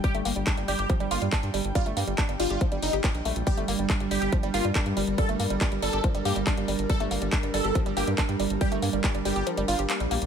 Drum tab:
HH |xxoxxxoxxxoxxxox|xxoxxxoxxxoxxxox|xxoxxxoxxxoxxxox|xxoxxxoxxxoxxxox|
CP |----x-------x---|----x-------x---|----x-------x---|----x-------x---|
BD |o---o---o---o---|o---o---o---o---|o---o---o---o---|o---o---o---o---|

HH |xxoxxxoxxxoxxxox|xxoxxxoxxxoxxxox|
CP |----x-------x---|----x-------x---|
BD |o---o---o---o---|o---o-----------|